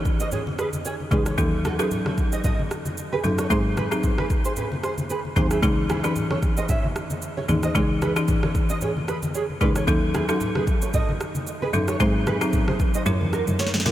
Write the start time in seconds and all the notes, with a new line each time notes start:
0.05 kick, shaker
0.20 C5 D#5, shaker
0.32 G#4 C#5, low conga, shaker
0.47 high conga
0.59 G#4 B4, cross-stick, shaker
0.73 high conga, shaker
0.85 G#4 C#5, shaker
1.00 high conga
1.11 C#2 E3 C#4 D#4 G#4 B4, kick, high conga, low conga, shaker
1.26 A4 C#5, cross-stick, shaker
1.38 D#2 F#3 C#4 D#4 A4, kick, shaker
1.65 F#4 A4, cross-stick, high conga, shaker
1.79 F#3 C#4 D#4 G#4 A4 B4, cross-stick, shaker
1.91 low conga, shaker
2.06 A4 C#5, cross-stick, high conga
2.18 kick, shaker
2.32 C5 D#5, shaker
2.44 A4 D#5, kick, low conga, shaker
2.59 high conga
2.71 cross-stick, shaker
2.85 high conga, shaker
2.97 shaker
3.12 G#4 B4, high conga
3.24 F#2 F#3 C#4 D#4 A4, high conga, low conga, shaker
3.38 A4 C#5, cross-stick, shaker
3.50 G#2 F#3 C4 D#4 G#4 C5, kick, shaker
3.77 G#4 B4, cross-stick, high conga, shaker
3.91 F#3 C4 D#4 G#4, cross-stick, shaker
4.03 kick, low conga, shaker
4.18 G#4 B4, cross-stick, high conga
4.30 kick, shaker
4.45 G#4 C5, shaker
4.56 G#4 B4, low conga, shaker
4.72 high conga
4.84 G#4 C5, cross-stick, shaker
4.98 high conga, shaker
5.10 G#4 B4, shaker
5.25 high conga
5.36 D#2 F#3 C4 D#4 G#4 C5, kick, high conga, low conga, shaker
5.51 E4 G#4, cross-stick, shaker
5.63 C#2 E3 C#4 D#4 G#4, kick, shaker
5.89 E4 G#4, cross-stick, high conga, shaker
6.04 E3 C#4 D#4 G#4 B4, cross-stick, shaker
6.16 low conga, shaker
6.31 A4 C#5, cross-stick, high conga
6.42 kick, shaker
6.57 C5 D#5, shaker
6.69 C#5 E5, kick, low conga, shaker
6.84 high conga
6.96 cross-stick, shaker
7.10 high conga, shaker
7.22 shaker
7.37 A4 C#5, high conga
7.48 D#2 E3 C#4 D#4 G#4, high conga, low conga, shaker
7.63 C5 D#5, cross-stick, shaker
7.75 C#2 E3 C#4 D#4 G#4 C#5, kick, shaker
8.02 G#4 B4, cross-stick, high conga, shaker
8.16 E3 C#4 D#4 G#4, cross-stick, shaker
8.28 kick, low conga, shaker
8.43 A4 C#5, cross-stick, high conga
8.55 kick, shaker
8.69 C5 D#5, shaker
8.81 G#4 C#5, low conga, shaker
8.97 high conga
9.08 G#4 B4, cross-stick, shaker
9.23 high conga, shaker
9.34 G#4 C#5, shaker
9.50 high conga
9.61 C#2 E3 C#4 D#4 G#4 B4, kick, high conga, low conga, shaker
9.75 A4 C#5, cross-stick, shaker
9.87 D#2 F#3 C#4 D#4 A4, kick, shaker
10.14 E4 G#4, cross-stick, high conga, shaker
10.29 F#3 C#4 D#4 F#4 A4, cross-stick, shaker
10.40 low conga, shaker
10.55 G#4 B4, cross-stick, high conga
10.67 kick, shaker
10.82 A4 C#5, shaker
10.93 A4 D#5, kick, low conga, shaker
11.09 high conga
11.21 cross-stick, shaker
11.35 high conga, shaker
11.47 shaker
11.62 G#4 B4, high conga
11.73 F#2 F#3 C#4 D#4 A4, high conga, low conga, shaker
11.88 A4 C#5, cross-stick, shaker
12.00 G#2 F#3 C4 D#4 G#4 C5, kick, shaker
12.27 G#4 B4, cross-stick, high conga, shaker
12.41 F#3 C4 D#4 G#4, cross-stick, shaker
12.53 kick, low conga, shaker
12.68 G#4 C5, cross-stick, high conga
12.80 kick, shaker
12.94 C5 D#5, shaker
13.06 F#2 F#3 C#4 E4 A#4 C#5, low conga, shaker
13.21 E2, high conga
13.33 F#4 A#4, cross-stick, shaker
13.47 F#2, high conga, shaker
13.59 A#4 C#5, snare, shaker
13.67 snare
13.74 F#2, snare, high conga
13.80 snare
13.86 A#2 F#3 C#4 E4 F#4 A#4, snare, high conga, low conga, shaker